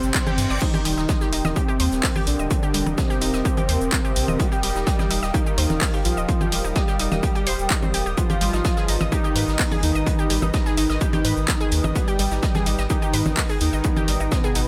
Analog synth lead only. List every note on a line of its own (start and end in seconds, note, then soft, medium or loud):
0.00 0.53 C4 loud
0.62 1.58 D#4 loud
1.56 2.18 C4 loud
2.27 2.99 D4 loud
2.98 4.41 C4 loud
4.40 5.25 G4 loud
5.34 5.96 D#4 loud
6.05 6.67 F4 loud
6.76 8.09 G4 loud
8.17 9.03 F4 loud
9.12 9.74 D#4 loud
9.83 10.45 D#4 loud
10.54 11.97 D#4 loud
11.95 12.81 G4 loud
12.90 13.52 D#4 loud
13.61 14.33 D#4 loud
14.32 14.68 B3 loud